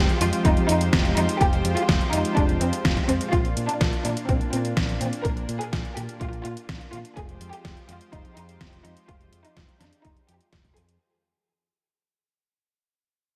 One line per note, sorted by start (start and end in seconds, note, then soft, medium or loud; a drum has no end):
0.00 3.29 F3 medium
0.00 3.29 G#3 medium
0.00 7.13 F4 medium
0.00 0.12 G4 medium
0.00 3.29 G4 medium
0.00 3.29 C5 medium
0.09 closed hi-hat soft
0.21 0.31 F2 medium
0.21 0.54 F3 medium
0.21 0.54 G#3 medium
0.21 0.54 C4 medium
0.21 0.39 F4 medium
0.21 0.54 G4 loud
0.21 closed hi-hat medium
0.33 closed hi-hat medium
0.45 0.55 F1 medium
0.45 0.63 D#4 medium
0.45 kick loud
0.45 closed hi-hat medium
0.57 0.66 F3 loud
0.57 0.66 G#3 medium
0.57 0.66 C4 medium
0.57 0.66 G4 loud
0.57 closed hi-hat soft
0.69 0.89 F2 medium
0.69 0.84 F3 medium
0.69 0.84 G#3 medium
0.69 0.84 C4 medium
0.69 1.04 D#4 medium
0.69 0.84 G4 medium
0.69 closed hi-hat medium
0.81 closed hi-hat medium
0.93 1.13 F1 medium
0.93 1.26 F3 medium
0.93 1.26 G#3 medium
0.93 1.26 C4 medium
0.93 1.26 G4 loud
0.93 kick loud
0.93 snare loud
0.93 closed hi-hat medium
1.05 closed hi-hat soft
1.17 1.27 F2 medium
1.17 1.35 D#4 medium
1.17 closed hi-hat medium
1.29 1.39 F3 loud
1.29 1.39 G#3 medium
1.29 1.39 C4 medium
1.29 1.39 G4 loud
1.29 closed hi-hat medium
1.41 1.61 F1 medium
1.41 1.74 F3 medium
1.41 1.74 G#3 medium
1.41 1.74 C4 medium
1.41 1.68 G4 loud
1.41 1.74 G4 loud
1.41 kick loud
1.41 closed hi-hat medium
1.53 closed hi-hat soft
1.65 1.75 F2 loud
1.65 closed hi-hat medium
1.77 2.01 F3 medium
1.77 2.01 G#3 medium
1.77 2.01 C4 medium
1.77 2.04 F4 medium
1.77 2.01 G4 loud
1.77 closed hi-hat medium
1.89 1.99 F1 medium
1.89 kick loud
1.89 snare loud
1.89 closed hi-hat soft
2.01 closed hi-hat soft
2.13 2.23 F2 medium
2.13 2.46 F3 medium
2.13 2.46 G#3 medium
2.13 2.46 C4 medium
2.13 2.31 D#4 medium
2.13 2.46 G4 loud
2.13 closed hi-hat medium
2.25 closed hi-hat soft
2.37 2.57 F1 medium
2.37 2.55 D4 medium
2.37 kick loud
2.37 closed hi-hat medium
2.49 2.58 F3 medium
2.49 2.58 G#3 medium
2.49 2.58 C4 medium
2.49 2.58 G4 loud
2.49 closed hi-hat soft
2.61 2.71 F2 medium
2.61 2.76 F3 medium
2.61 2.76 G#3 medium
2.61 2.76 C4 medium
2.61 2.96 C4 medium
2.61 2.76 G4 medium
2.61 closed hi-hat medium
2.73 closed hi-hat soft
2.85 2.95 F1 loud
2.85 3.18 F3 medium
2.85 3.18 G#3 medium
2.85 3.18 C4 medium
2.85 3.18 G4 loud
2.85 kick loud
2.85 snare loud
2.85 closed hi-hat medium
2.97 kick medium
2.97 closed hi-hat soft
3.09 3.19 F2 medium
3.09 3.27 C4 medium
3.09 closed hi-hat medium
3.21 3.31 A#2 loud
3.21 3.31 F3 medium
3.21 3.31 G#3 medium
3.21 3.31 C4 medium
3.21 3.31 G4 loud
3.21 closed hi-hat medium
3.33 3.53 A#1 medium
3.33 3.66 A#2 medium
3.33 3.66 A#3 medium
3.33 7.13 A#3 medium
3.33 3.66 D4 medium
3.33 7.13 D4 medium
3.33 3.59 F4 medium
3.33 3.66 F4 medium
3.33 3.66 D5 loud
3.33 kick loud
3.33 closed hi-hat soft
3.45 closed hi-hat soft
3.57 3.67 A#2 loud
3.57 closed hi-hat medium
3.69 3.93 A#2 loud
3.69 3.93 A#3 medium
3.69 3.95 D4 medium
3.69 3.93 D4 medium
3.69 3.93 F4 medium
3.69 3.93 D5 loud
3.69 closed hi-hat medium
3.81 3.91 A#1 medium
3.81 kick loud
3.81 snare loud
3.81 closed hi-hat soft
3.93 closed hi-hat soft
4.05 4.15 A#2 medium
4.05 4.38 A#2 medium
4.05 4.38 A#3 medium
4.05 4.23 D4 medium
4.05 4.38 D4 medium
4.05 4.38 F4 medium
4.05 4.38 D5 loud
4.05 closed hi-hat medium
4.17 closed hi-hat soft
4.28 4.39 A#1 loud
4.28 4.46 C4 medium
4.28 kick loud
4.28 closed hi-hat soft
4.41 4.50 A#2 medium
4.41 4.50 A#3 medium
4.41 4.50 D4 medium
4.41 4.50 F4 medium
4.41 4.50 D5 loud
4.41 closed hi-hat soft
4.53 4.73 A#2 medium
4.53 4.68 A#2 medium
4.53 4.68 A#3 medium
4.53 4.88 C4 medium
4.53 4.68 D4 medium
4.53 4.68 F4 medium
4.53 closed hi-hat medium
4.65 closed hi-hat soft
4.77 4.97 A#1 medium
4.77 5.10 A#2 medium
4.77 5.10 A#3 medium
4.77 5.10 D4 medium
4.77 5.10 F4 medium
4.77 5.10 D5 medium
4.77 kick loud
4.77 snare loud
4.77 closed hi-hat soft
4.89 closed hi-hat soft
5.01 5.11 A#2 medium
5.01 5.19 C4 medium
5.01 closed hi-hat medium
5.13 5.23 A#2 medium
5.13 5.23 A#3 medium
5.13 5.23 D4 medium
5.13 5.23 F4 medium
5.13 closed hi-hat soft
5.25 5.45 A#1 medium
5.25 5.58 A#2 medium
5.25 5.58 A#3 medium
5.25 5.58 D4 medium
5.25 5.58 F4 medium
5.25 5.51 A#4 loud
5.25 5.58 D5 medium
5.25 kick loud
5.25 closed hi-hat soft
5.37 closed hi-hat soft
5.49 5.59 A#2 medium
5.49 closed hi-hat medium
5.61 5.85 A#2 loud
5.61 5.85 A#3 medium
5.61 5.85 D4 medium
5.61 5.85 F4 medium
5.61 5.88 G#4 medium
5.61 5.85 D5 loud
5.61 closed hi-hat soft
5.73 5.83 A#1 medium
5.73 kick loud
5.73 snare loud
5.73 closed hi-hat soft
5.85 closed hi-hat soft
5.97 6.07 A#2 medium
5.97 6.30 A#2 medium
5.97 6.30 A#3 medium
5.97 6.30 D4 medium
5.97 6.30 F4 medium
5.97 6.15 G4 medium
5.97 6.30 D5 medium
5.97 closed hi-hat medium
6.09 closed hi-hat soft
6.20 6.41 A#1 medium
6.20 6.38 F4 medium
6.20 kick loud
6.20 closed hi-hat soft
6.33 6.42 A#2 medium
6.33 6.42 A#3 medium
6.33 6.42 D4 medium
6.33 6.42 F4 medium
6.33 6.42 D5 loud
6.33 closed hi-hat soft
6.45 6.55 A#2 medium
6.45 6.60 A#2 medium
6.45 6.60 A#3 medium
6.45 6.60 D4 medium
6.45 6.80 F4 medium
6.45 6.60 D5 medium
6.45 closed hi-hat medium
6.57 closed hi-hat soft
6.69 6.79 A#1 loud
6.69 7.02 A#2 medium
6.69 7.02 A#3 medium
6.69 7.02 D4 medium
6.69 7.02 F4 medium
6.69 7.02 D5 medium
6.69 kick loud
6.69 snare loud
6.69 closed hi-hat soft
6.81 closed hi-hat soft
6.93 7.03 A#2 medium
6.93 7.11 F4 medium
6.93 closed hi-hat medium
7.05 7.15 A#3 loud
7.05 7.15 D4 medium
7.05 7.15 F4 medium
7.05 7.15 D5 loud
7.05 closed hi-hat soft
7.17 7.37 F1 medium
7.17 10.97 F3 medium
7.17 7.50 F3 medium
7.17 10.97 G#3 medium
7.17 7.50 G#3 medium
7.17 7.50 C4 medium
7.17 10.97 F4 medium
7.17 10.97 G4 medium
7.17 7.50 G4 loud
7.17 7.43 G#4 loud
7.17 10.97 C5 medium
7.17 kick loud
7.17 closed hi-hat soft
7.29 closed hi-hat soft
7.41 7.51 F2 medium
7.41 closed hi-hat medium
7.52 7.77 F3 loud
7.52 7.77 G#3 medium
7.52 7.77 C4 medium
7.52 7.79 G4 medium
7.52 7.77 G4 loud
7.52 closed hi-hat soft
7.65 7.75 F1 medium
7.65 kick loud
7.65 snare loud
7.65 closed hi-hat medium
7.77 closed hi-hat soft
7.88 7.99 F2 medium
7.88 8.22 F3 medium
7.88 8.22 G#3 medium
7.88 8.22 C4 medium
7.88 8.06 F4 medium
7.88 8.22 G4 medium
7.88 closed hi-hat medium
8.01 closed hi-hat soft
8.12 8.23 F1 medium
8.12 8.30 D#4 medium
8.12 kick loud
8.12 closed hi-hat soft
8.25 8.34 F3 medium
8.25 8.34 G#3 medium
8.25 8.34 C4 medium
8.25 8.34 G4 loud
8.25 closed hi-hat soft
8.36 8.57 F2 medium
8.36 8.52 F3 medium
8.36 8.52 G#3 medium
8.36 8.52 C4 medium
8.36 8.72 D#4 medium
8.36 8.52 G4 medium
8.36 closed hi-hat medium
8.49 closed hi-hat soft
8.61 8.94 F3 medium
8.61 8.94 G#3 medium
8.61 8.94 C4 medium
8.61 8.94 G4 loud
8.61 kick loud
8.61 snare loud
8.61 closed hi-hat soft
8.73 closed hi-hat soft
8.84 8.95 F2 medium
8.84 9.02 D#4 medium
8.84 closed hi-hat medium
8.97 9.07 F3 medium
8.97 9.07 G#3 medium
8.97 9.07 C4 medium
8.97 9.07 G4 loud
8.97 closed hi-hat soft
9.09 9.29 F1 medium
9.09 9.42 F3 medium
9.09 9.42 G#3 medium
9.09 9.42 C4 medium
9.09 9.36 F4 loud
9.09 9.42 G4 medium
9.09 kick loud
9.09 closed hi-hat soft
9.21 closed hi-hat soft
9.33 9.43 F2 medium
9.33 closed hi-hat medium
9.45 9.69 F3 loud
9.45 9.69 G#3 medium
9.45 9.69 C4 medium
9.45 9.71 D#4 medium
9.45 9.69 G4 loud
9.45 closed hi-hat medium
9.57 9.67 F1 medium
9.57 kick loud
9.57 snare loud
9.57 closed hi-hat medium
9.69 closed hi-hat soft
9.81 9.91 F2 medium
9.81 10.14 F3 medium
9.81 10.14 G#3 medium
9.81 10.14 C4 medium
9.81 9.99 D4 medium
9.81 10.14 G4 loud
9.81 snare medium
9.81 closed hi-hat medium
9.93 closed hi-hat soft
10.05 10.15 F1 medium
10.05 10.23 D#4 medium
10.05 kick loud
10.05 closed hi-hat soft
10.17 10.26 F3 medium
10.17 10.26 G#3 medium
10.17 10.26 C4 medium
10.17 10.26 G4 loud
10.17 closed hi-hat soft
10.29 10.39 F2 medium
10.29 10.53 G#3 medium
10.29 10.53 C4 medium
10.29 10.64 G4 medium
10.29 10.53 G4 medium
10.29 closed hi-hat medium
10.41 closed hi-hat soft
10.53 10.73 F1 medium
10.53 kick loud
10.53 snare loud
10.53 closed hi-hat soft
10.65 kick medium
10.65 closed hi-hat soft
10.77 10.97 F2 medium
10.77 10.87 C4 medium
10.77 10.95 G#4 medium
10.77 closed hi-hat medium
10.89 10.98 G#3 medium
10.89 10.98 C4 medium
10.89 10.98 G4 loud
10.89 closed hi-hat medium